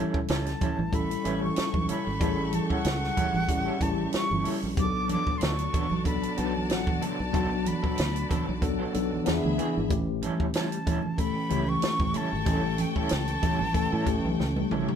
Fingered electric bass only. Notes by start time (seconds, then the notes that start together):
0.15 muted fingered electric bass stroke
0.30 C#2
0.79 A1
1.26 A1
1.58 muted fingered electric bass stroke
1.74 B1
2.07 G#1
2.21 A1
2.71 muted fingered electric bass stroke
2.85 C#2
3.34 A1
3.81 A1
4.14 muted fingered electric bass stroke
4.31 G1
4.63 A#1
4.78 B1
5.27 muted fingered electric bass stroke
5.42 D2
5.91 B1
6.38 B1
6.71 A1
7.20 B1
7.34 B1
7.84 muted fingered electric bass stroke
7.99 D2
8.49 B1
8.95 B1
9.27 E2
9.45 D2
9.77 G#1
9.91 A1
10.40 muted fingered electric bass stroke
11.51 C#2
11.83 muted fingered electric bass stroke
12.00 A1
12.33 G#1
12.47 A1
12.96 muted fingered electric bass stroke
13.12 C#2
13.61 A1
13.93 A2
14.07 A1
14.24 B1
14.40 C#2
14.72 A#1